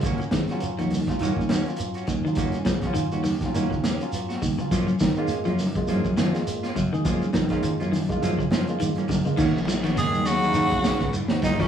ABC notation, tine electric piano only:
X:1
M:4/4
L:1/16
Q:"Swing 16ths" 1/4=103
K:Ebm
V:1 name="Tine electric piano"
z3 [G,DF]2 z2 [G,DF]2 z2 [G,DF]2 z2 [G,DF]- | [G,DF] z2 [G,DF]2 z2 [G,DF]2 z2 [G,DF]2 z2 [G,DF] | z3 [A,B,F]2 z2 [A,B,F]2 z2 [A,B,F]2 z2 [A,B,A]- | [A,B,A] z2 [A,B,F]2 z2 [A,B,F]2 z2 [A,B,F]2 z2 [A,B,F] |
z16 |]